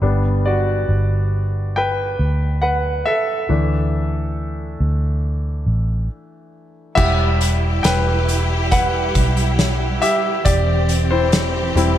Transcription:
0.02 G1 G3 B3 D4
0.46 F#4 D5
0.89 G1
1.76 B4 G5
2.19 D2
2.62 B4 F#5
3.06 A4 E5
3.49 D2 E3 A3 D4
4.80 D2
5.66 A1
6.95 E1 G3 E4 G4 E5 F#5, kick, crash
7.41 closed hi-hat
7.83 E1 B4 G5, snare, closed hi-hat
8.29 closed hi-hat
8.71 B4 F#5, kick, closed hi-hat
9.15 B1, kick, closed hi-hat
9.37 closed hi-hat
9.59 snare, closed hi-hat
10.02 G4 E5, closed hi-hat
10.45 E1 E3 C4 G4 D5, kick, closed hi-hat
10.89 closed hi-hat
11.11 E4 C5
11.32 snare, closed hi-hat
11.76 E1 G3 C4 E4, closed hi-hat

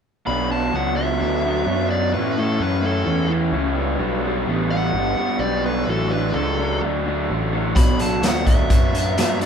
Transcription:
0.26 B1 B2 F#3 B3 D4 B5
0.49 B2 F#3 B3 D4 A5
0.73 C#2 B2 F#3 B3 D4 F#5
0.96 B2 F#3 B3 D4 E5
1.19 D2 B2 F#3 B3 D4
1.43 B2 F#3 B3 D4
1.66 F#2 B2 F#3 B3 D4
1.90 B2 F#3 B3 D4 D5
2.14 A2 E3 A3 C#4 E4 B4
2.36 A2 E3 A3 C#4 E4 A4
2.60 F#2 A2 E3 A3 C#4 E4 B4
2.81 A2 E3 A3 C#4 E4
2.86 A4
3.05 E2 A2 E3 A3 C#4 E4
3.28 A2 E3 A3 C#4 E4
3.51 C#2 A2 E3 A3 C#4 E4
3.75 B2 G3 B3 D4
3.98 B1 B2 G3 B3 D4
4.23 B2 G3 B3 D4
4.47 A1 B2 G3 B3 D4
4.71 B2 G3 B3 D4 F#5
4.93 G1 B2 G3
4.97 B3 D4
5.17 B2 G3 B3 D4, muted picked electric bass stroke
5.39 B1 B2 G3 B3 D4 D5
5.63 B2 G3 B3 D4 B4
5.87 A1 D3 F#3 A3 D4 A4
6.11 D3 F#3 A3 D4 B4
6.33 C#2 D3 F#3 A3 D4 A4
6.58 D3 F#3 A3 D4
6.82 D2 D3 F#3 A3 D4
7.06 D3 F#3 A3 D4
7.30 A1 D3 F#3 A3 D4
7.53 D3 F#3 A3 D4
7.76 B1 B2 F#3 B3 D4 B5, kick, closed hi-hat
7.99 B2 F#3 B3 D4 A5, closed hi-hat
8.21 D2 B2 F#3 B3 D4, snare, closed hi-hat
8.27 F#5
8.44 B2 F#3 B3 D4 E5, kick, closed hi-hat
8.69 F#2 B2 F#3 B3 D4, kick, closed hi-hat
8.93 B2 F#3 B3 D4, closed hi-hat
9.16 G2 B2 F#3 B3 D4, snare, closed hi-hat
9.40 B2 F#3 B3 D4 D5, closed hi-hat

